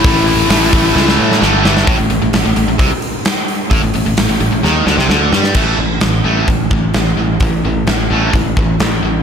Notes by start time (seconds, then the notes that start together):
Already playing: E4
0.04 A1 A2 E3 A3, kick, open hi-hat
0.28 open hi-hat
0.50 A1 A2 E3 A3, snare, open hi-hat
0.73 A1 A2 E3 A3, kick, open hi-hat
0.96 C#2 A2 E3 A3, snare
1.08 snare
1.19 A2
1.32 snare
1.41 G1 A2 E3 A3, snare
1.65 A2 E3 A3, snare
1.77 snare
1.87 A1 A2, kick, open hi-hat
1.99 A1 A2
2.10 A1 A2, open hi-hat
2.22 A1 A2
2.33 A1 A2, snare, open hi-hat
2.45 A1 A2
2.56 A1 A2, open hi-hat
2.68 A1 A2
2.79 C2 C3, kick, open hi-hat
3.02 open hi-hat
3.25 snare, open hi-hat
3.48 open hi-hat
3.71 A1 A2, kick, open hi-hat
3.83 A1 A2
3.94 A1 A2, open hi-hat
4.06 A1 A2
4.17 A1 A2, snare, open hi-hat
4.29 A1 A2
4.40 A1 A2, open hi-hat
4.52 A1 A2
4.63 D#2 D#3, snare
4.86 D2 D3, snare
4.97 C2 C3, snare
5.09 D2 D3, snare
5.32 G2 G3, snare
5.44 snare
5.54 A1 A2 E3 A3, kick, crash
5.79 A1 A2 E3
6.01 A1 A2 E3, snare, open hi-hat
6.24 A1 A2 E3 A3
6.48 A1 A2 E3, kick, open hi-hat
6.71 A1 A2 E3, kick
6.94 A1 A2 E3, snare, open hi-hat
7.17 A1 A2 E3
7.40 A1 A2 E3, kick, open hi-hat
7.64 A1 A2 E3
7.87 A1 A2 E3, snare, open hi-hat
8.10 A1 A2 E3 A3
8.33 A1 A2 E3, kick, open hi-hat
8.57 A1 A2 E3, kick
8.80 A1 A2 E3, snare, open hi-hat
9.03 A1 A2 E3